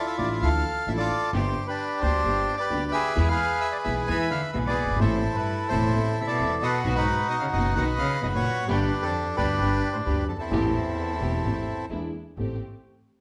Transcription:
Already playing: bandoneon E4 F4 A4
0.07 bandoneon E5
0.18 upright piano A1 A2 E3 A3 D4 F4, upright bass A1, string section F3 D4 E4, bandoneon D5
0.41 upright piano D2 D3 E3 A3 D4 F4, upright bass D2, string section F3 D4 E4, bandoneon A4 F5
0.87 upright bass A1, upright piano A1 A2 E3 A3 D4 F4, string section F3 D4 E4, bandoneon E5
0.98 bandoneon F4 A4 D5
1.33 upright bass G1, upright piano G1 G2 D3 G3 B3 G4, string section B3 D4 G4, bandoneon G4 C5
1.68 bandoneon D4 G4 B4
2.01 upright bass D2, upright piano D2 D3 G3 B3 G4, string section B3 D4 G4, bandoneon G4 C5
2.24 upright bass G1, upright piano G1 G2 D3 G3 B3 G4, string section B3 D4 G4
2.58 bandoneon G4 B4 D5
2.70 upright piano D2 D3 G3 B3 G4, upright bass D2, string section B3 D4 G4
2.92 bandoneon G#4 B4 E5
3.16 upright piano E2 E3 G#3 B3 G#4, upright bass E2, string section B3 E4 G#4
3.28 bandoneon G#4 B4 F5
3.60 bandoneon E5
3.72 bandoneon D5
3.84 upright piano B1 B2 E3 G#3 B3 G#4, upright bass B1, string section B3 E4 G#4, bandoneon E5
4.06 upright piano E2 E3 G#3 B3, upright bass E2, cello E3, string section B3 E4 G#4, bandoneon B4 E5 G#5
4.29 cello D3, bandoneon F5
4.52 upright bass B1, upright piano B1 B2 E3 G#3 B3 G#4, cello B2, string section B3 E4 G#4, bandoneon E5
4.65 cello B2, bandoneon G#4 D5
4.69 bandoneon B4
4.82 upright piano F#1, upright bass F#1
4.88 upright piano G1, upright bass G1
4.96 upright piano G#1 E3 A3, upright bass G#1, cello A2
5.00 upright piano A1 A2 C4 A4, upright bass A1, string section C4 E4 A4, bandoneon E4 A4 C5
5.34 cello G2, bandoneon E4 B4
5.69 upright piano E1 E2 E3 A3 C4 A4, upright bass E1, cello A2, string section C4 E4 A4, bandoneon E4 A4 C5
5.93 upright piano A1 A2 E3 A3 C4 A4, upright bass A1, string section C4 E4 A4
6.20 cello C3, bandoneon E5
6.26 cello B2, bandoneon A4 D5
6.39 upright bass E1, upright piano E1 E2 E3 A3 C4 A4, string section C4 E4 A4
6.61 cello B2, bandoneon F#4 B4 D#5
6.84 upright piano B1 B2 D#3 F#3 B3 F#4, upright bass B1, string section B3 D#4 F#4
6.96 cello G#2, bandoneon D#4 F#4 B4
7.29 cello B2, bandoneon D#5
7.40 cello C#3, bandoneon F5
7.53 upright bass F#1, upright piano F#1 F#2 D#3 F#3 B3 F#4, cello B2, string section B3 D#4 F#4, bandoneon D#5
7.75 upright piano B1 B2 D#3 F#3 B3 F#4, upright bass B1, cello D#3, string section B3 D#4 F#4, bandoneon B4 D#5 F#5
7.99 cello C#3, bandoneon F5
8.21 upright bass F#1, upright piano F#1 F#2 D#3 F#3 B3 F#4, cello B2, string section B3 D#4 F#4, bandoneon D#5
8.33 cello A#2, bandoneon F#4 C#5
8.67 upright piano G1 G2 D3 G3 B3 G4, upright bass G1, cello G2, string section B3 D4 G4, bandoneon G4 B4
8.71 bandoneon D4
9.01 cello F2, bandoneon D4 A4
9.36 upright bass D2, upright piano D2 D3 G3 B3 G4, cello G2, string section B3 D4 G4, bandoneon D4 G4 B4
9.60 upright bass G1, upright piano G1 G2 D3 G3 B3 G4, string section B3 D4 G4
9.93 cello A2, bandoneon C5
10.05 upright bass D2, upright piano D2 D3 G3 B3 G4, cello G2, string section B3 D4 G4, bandoneon B4
10.28 cello F2, bandoneon A4
10.39 cello E2, bandoneon C4 E4 A4
10.51 upright bass A1, upright piano A1 A2 E3 A3 C4 G4, string section A3 C4 G4
11.20 upright bass E1, upright piano E1 E2 E3 A3 C4 G4, string section A3 C4 G4
11.43 upright bass A1, upright piano A1 A2 E3 A3 C4 G4, string section A3 C4 G4
11.90 upright bass E2, upright piano E2 E3 B3 D4 G#4, string section G#3 D4 E4
12.37 upright bass A1, upright piano A1 C4 G4 A4, string section A3 C4 G4

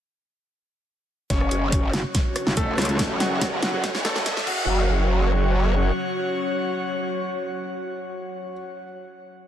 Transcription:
1.30 wobble bass F#1, ambient pad C#3 F#3 C#4, grand piano C#4 C#5, analog synth pad F#4, kick, snare, closed hi-hat, riser
1.41 cross-stick
1.51 wobble bass F#1, closed hi-hat
1.72 analog synth pad C#5, kick, closed hi-hat
1.93 wobble bass F#1, snare, closed hi-hat
2.15 kick, snare, closed hi-hat
2.36 cross-stick, closed hi-hat
2.47 wobble bass F#1, snare
2.57 wobble bass E1, grand piano A3 A4, kick, closed hi-hat
2.63 analog synth pad F#5
2.78 wobble bass C#2, cross-stick, snare, closed hi-hat
2.82 closed hi-hat
2.85 closed hi-hat
2.99 wobble bass F#1, kick, snare, closed hi-hat
3.20 grand piano F#3 F#4, snare, closed hi-hat
3.41 kick, snare, closed hi-hat
3.63 wobble bass F#1, grand piano F#3 F#4, snare, closed hi-hat
3.73 wobble bass G1
3.84 kick, snare, closed hi-hat
3.95 wobble bass F#1, snare
4.05 grand piano A3 A4, snare, closed hi-hat
4.16 snare
4.26 kick, snare, closed hi-hat
4.37 snare
4.47 wobble bass F#1, ambient pad F#3 C#4 C#5, analog synth pad F#4, grand piano F#4, kick, crash
4.54 analog synth pad C#5
4.81 analog synth pad F#5

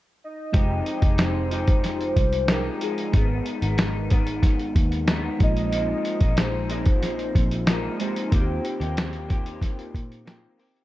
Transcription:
0.24 soft synth lead D#5
0.52 picked electric bass F1, clean electric guitar F3 G#3 D#4 G4, synth keys G#3 C4 D#4, kick, closed hi-hat
0.58 synth keys G5
0.86 closed hi-hat
1.02 picked electric bass F1, clean electric guitar G#3 D#4 G4, kick, closed hi-hat
1.18 soft synth lead C5, snare, closed hi-hat
1.51 clean electric guitar F3 G#3 D#4 G4, closed hi-hat
1.67 kick, closed hi-hat
1.84 soft synth lead C5, snare, closed hi-hat
2.01 closed hi-hat
2.16 picked electric bass C2, kick, closed hi-hat
2.33 closed hi-hat
2.48 clean electric guitar F3 G#3 D#4 G4, soft synth lead A#4, snare, closed hi-hat
2.80 clean electric guitar F3 G#3 D#4, soft synth lead G#4, closed hi-hat
2.98 closed hi-hat
3.12 picked electric bass G#1, clean electric guitar G#2 D#3 B3 D#4, synth keys G#3 B3 D#4, kick, closed hi-hat
3.17 synth keys G#4
3.46 closed hi-hat
3.61 picked electric bass G#1, clean electric guitar D#3 B3 D#4, closed hi-hat
3.78 snare, closed hi-hat
4.10 clean electric guitar G#2 D#3 B3 D#4, kick, closed hi-hat
4.27 closed hi-hat
4.43 kick, snare, closed hi-hat
4.59 closed hi-hat
4.76 picked electric bass D#2, kick, closed hi-hat
4.92 closed hi-hat
5.07 clean electric guitar G#2 D#3 B3 D#4, snare, closed hi-hat
5.38 picked electric bass A#1, clean electric guitar A#2 F3 G#3, synth keys G#3 C4 D#4, kick, closed hi-hat
5.42 clean electric guitar D#4, synth keys F4, soft synth lead D#5
5.57 closed hi-hat
5.71 clean electric guitar A#2 F3 G#3 D#4, closed hi-hat
6.05 closed hi-hat
6.20 picked electric bass A#1, clean electric guitar F3 G#3 D#4, kick, closed hi-hat
6.37 soft synth lead C5, snare, closed hi-hat
6.69 clean electric guitar A#2 F3 G#3 D#4, closed hi-hat
6.85 kick, closed hi-hat
7.03 soft synth lead C5, snare, closed hi-hat
7.19 closed hi-hat
7.35 picked electric bass A#1, kick, closed hi-hat
7.51 closed hi-hat
7.66 clean electric guitar A#2 F3 G#3 D#4, soft synth lead A#4, snare, closed hi-hat
7.99 clean electric guitar A#2 F3 G#3 D#4, synth keys G#3 C4 D#4 G4, soft synth lead C5, closed hi-hat
8.16 closed hi-hat
8.30 picked electric bass D#2, clean electric guitar D#3 A#3 C4 G4, synth keys A#3 C4 F4, kick, closed hi-hat
8.35 synth keys F#4
8.42 synth keys G4
8.65 closed hi-hat
8.80 picked electric bass D#2, clean electric guitar A#3 C4 G4, closed hi-hat
8.97 snare, closed hi-hat
9.13 closed hi-hat
9.28 clean electric guitar D#3 A#3 C4 G4, kick, closed hi-hat
9.46 closed hi-hat
9.62 kick, snare, closed hi-hat
9.79 closed hi-hat
9.95 picked electric bass A#2, kick, closed hi-hat
10.12 closed hi-hat
10.25 clean electric guitar D#3 A#3 C4 G4, synth keys A#3 C4 F4 A#4, snare, closed hi-hat
10.57 clean electric guitar D#3 A#3 C4 G4, open hi-hat
10.76 closed hi-hat

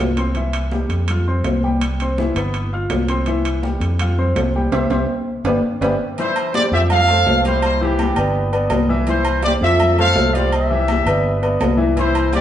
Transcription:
Already playing: fingered electric bass C2, grand piano F4 F5 F6
0.17 grand piano C4 C5 C6, high timbale
0.35 grand piano E3 E4 E5, high conga, high timbale
0.53 high conga, high timbale
0.71 grand piano G3 G4 G5, high conga, low timbale
0.89 fingered electric bass F2, high conga, high timbale
1.07 grand piano F4 F5 F6, high conga, low conga, high timbale
1.26 grand piano C4 C5 C6, high conga
1.44 fingered electric bass C2, high conga, high timbale, low timbale
1.63 grand piano G3 G4 G5, high conga
1.81 high conga, high timbale
2.00 grand piano C4 C5 C6, high conga, high timbale
2.18 grand piano E3 E4 E5, high conga, low timbale
2.35 fingered electric bass G1, grand piano B3 B4 B5, high conga, high timbale
2.54 high conga, high timbale
2.72 grand piano F4 F5 F6, high conga
2.90 fingered electric bass C2, high conga, high timbale, low timbale
3.08 grand piano C4 C5 C6, high timbale
3.26 grand piano E3 E4 E5, high conga, high timbale
3.45 high timbale
3.63 grand piano G3 G4 G5, high conga, low timbale
3.80 fingered electric bass F2, high conga, high timbale
3.99 grand piano F4 F5 F6, high conga, low conga, high timbale
4.18 grand piano C4 C5 C6, high conga, low conga
4.36 fingered electric bass C2, high conga, high timbale, low timbale
4.54 grand piano G3 G4 G5, high conga
4.72 fingered electric bass C2, grand piano G4 C5 E5, high conga, high timbale
4.90 fingered electric bass C2, grand piano G4 C5 E5, high conga, high timbale
5.44 fingered electric bass G1, grand piano G4 B4 D5, high conga, high timbale
5.81 fingered electric bass G1, grand piano G4 B4 D5, high conga, high timbale
6.18 grand piano E3 E4 E5, trumpet section E4 C5, high conga, low agogo
6.36 high conga, low agogo
6.54 grand piano G3 G4 C5, trumpet section G4 D5, high conga, low timbale, low agogo
6.72 fingered electric bass F2, grand piano F3 F4 F5, trumpet section G4 E5, high conga
6.90 trumpet section A4 F5, high conga, low conga, low agogo
7.08 grand piano A3 A4 C5, high conga, low agogo
7.26 fingered electric bass C2, high conga, low timbale
7.45 grand piano G3 G4 C5, trumpet section E4 C5, low agogo
7.62 trumpet section E4 C5, high conga, low agogo
7.81 grand piano E3 E4 E5, trumpet section B3 G4, high conga
7.99 high conga, low timbale, low agogo
8.16 fingered electric bass G1, grand piano B3 B4 D5, high conga, low agogo
8.35 high conga
8.52 grand piano B3 B4 D5, high conga, low agogo
8.70 fingered electric bass C2, high conga, low timbale, low agogo
8.89 grand piano E3 E4 E5
9.07 grand piano E3 E4 E5, trumpet section E4 C5, low agogo
9.25 low agogo
9.43 grand piano G3 G4 C5, trumpet section G4 D5, high conga, low timbale, low agogo
9.61 fingered electric bass F2, grand piano F3 F4 E5, trumpet section A4 E5, high conga
9.80 high conga, low conga, low agogo
9.98 grand piano A3 A4 C5, trumpet section A4 F5, high conga, low conga, low agogo
10.16 fingered electric bass C2, high conga, low timbale
10.33 grand piano G3 G4 C5, trumpet section F4 D5, low agogo
10.52 trumpet section G4 E5, high conga, low agogo
10.70 grand piano E3 E4 E5, high conga
10.88 high conga, low timbale, low agogo
11.06 fingered electric bass G1, grand piano B3 B4 D5, high conga, low agogo
11.25 high conga
11.42 grand piano B3 B4 D5, high conga, low agogo
11.60 fingered electric bass C2, high conga, low timbale, low agogo
11.77 grand piano E3 E4 E5
11.96 grand piano E3 E4 E5, trumpet section E4 C5, high conga, low agogo
12.15 high conga, low agogo
12.32 grand piano G3 G4 C5, trumpet section G4 D5, high conga, low timbale, low agogo

